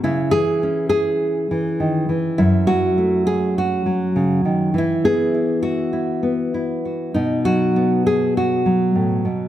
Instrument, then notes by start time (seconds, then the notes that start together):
nylon-string guitar
0.03 C#3 E4
0.31 E3 G#4
0.63 C#4
0.89 G#4
1.51 E3
1.80 D#3
2.09 E3
2.38 F#2 E4
2.67 F#3 F#4
2.98 A3
3.27 G#4
3.58 F#4
3.86 F#3
4.16 C#3
4.45 D#3
4.74 E3
4.78 E4
5.04 B3 G#4
5.34 E4
5.63 F#4
5.93 E4
6.23 B3
6.54 E4
6.85 F#4
7.14 B2 D#4
7.45 F#3 F#4
7.76 B3
8.07 G#4
8.37 F#4
8.66 F#3
8.95 A2
9.25 B2